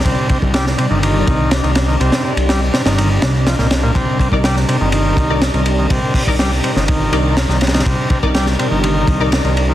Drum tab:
RD |x---x---x---x---x---x---x-x-x---|x-x---x-x---x-x-x---x---x---x---|x---x---x---x---x---x---x-x-x---|x-------x---x---x---x---x---xxxx|
HH |--------------------------------|--------------------------------|--------------------------------|----o---------------------------|
SD |--------o-o-------------o---o---|--o-----o---o-o-----o---o-o-o---|--------o-o-------------o-------|--------o-----o---------o-o-oooo|
BD |o---o-o-------------o-----------|--------------------------------|o---o-o-------------o-----------|o---o-o---------o---------------|

RD |x---x---x---x---x---x---x-x-x---|
HH |--------------------------------|
SD |--------o-o-------------o-------|
BD |o---o-o-------------o-----------|